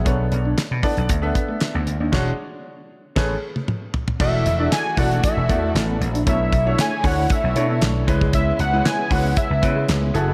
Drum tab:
CC |----------------|x-------x-------|x---------------|----------------|
HH |x-x-x-oxx-x-x-x-|----------------|--x-x-oxx-x-x-xx|x-x-x-o-x-x-x-x-|
CP |----x-------x---|----------------|----x-------x---|----x-------x---|
SD |----o-------o---|o-------o-------|----o-------o---|----o-------o---|
T1 |----------------|-----------o----|----------------|----------------|
T2 |----------------|------------o---|----------------|----------------|
FT |----------------|--------------oo|----------------|----------------|
BD |o-----o-o-o-----|o-------o-------|o-----o-o-o-----|o-o---o-o-----oo|

CC |----------------|
HH |x-x-x-o-x-x-x-x-|
CP |----x-------x---|
SD |----o-------o---|
T1 |----------------|
T2 |----------------|
FT |----------------|
BD |o-----o-o-o-----|